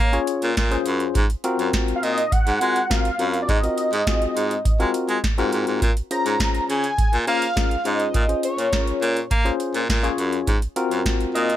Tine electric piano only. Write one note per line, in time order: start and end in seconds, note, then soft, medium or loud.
0.13 0.50 C#4 medium
0.13 0.50 F4 medium
0.13 0.50 G#4 medium
0.13 0.50 C#5 loud
0.71 1.15 C#4 medium
0.71 1.15 F4 medium
0.71 1.15 G#4 medium
0.71 1.15 C5 loud
1.44 2.18 C4 loud
1.44 2.18 F4 medium
1.44 2.18 F#4 medium
1.44 2.18 A#4 loud
2.61 2.79 C4 medium
2.61 2.79 F4 medium
2.61 2.80 F#4 medium
2.61 2.80 A#4 medium
2.90 3.08 C4 medium
2.90 3.08 F4 medium
2.90 3.09 F#4 medium
2.90 3.09 A#4 medium
3.19 3.47 C4 medium
3.19 3.47 F4 medium
3.19 3.47 F#4 medium
3.19 3.47 A#4 medium
3.63 3.91 C4 medium
3.63 3.91 F4 medium
3.63 3.91 F#4 medium
3.63 3.91 A#4 medium
4.07 4.13 B3 medium
4.07 4.53 F4 medium
4.07 4.53 F#4 medium
4.07 4.53 G#4 medium
4.13 4.56 C4 medium
4.79 5.16 C4 medium
4.79 5.16 F4 medium
4.79 5.17 F#4 medium
4.79 5.17 A#4 loud
5.38 5.81 C4 loud
5.38 5.82 F4 medium
5.38 5.82 F#4 medium
5.38 5.82 A#4 loud
6.11 6.84 C#4 medium
6.11 6.84 F4 medium
6.11 6.84 G#4 medium
6.11 6.85 C5 medium
7.27 7.45 C#4 medium
7.27 7.45 F4 medium
7.27 7.46 G#4 medium
7.27 7.46 C5 medium
7.56 7.75 C#4 medium
7.56 7.75 F4 medium
7.56 7.75 G#4 medium
7.56 7.75 A#4 medium
7.85 8.13 C#4 medium
7.85 8.13 F4 medium
7.85 8.13 G#4 medium
7.85 8.13 C5 medium
8.28 8.56 C#4 medium
8.28 8.56 F4 medium
8.28 8.57 G#4 medium
8.28 8.57 C5 medium
8.72 9.18 C#4 medium
8.72 9.18 F4 medium
8.72 9.19 G#4 medium
8.72 9.19 A#4 medium
9.45 9.82 C#4 medium
9.45 9.82 F4 medium
9.45 9.82 G#4 medium
9.45 9.82 C5 loud
10.03 10.47 C#4 loud
10.03 10.47 F4 medium
10.03 10.47 G#4 medium
10.03 10.48 C#5 loud
10.76 11.50 C4 loud
10.76 11.50 F4 medium
10.76 11.50 F#4 medium
10.76 11.50 A#4 loud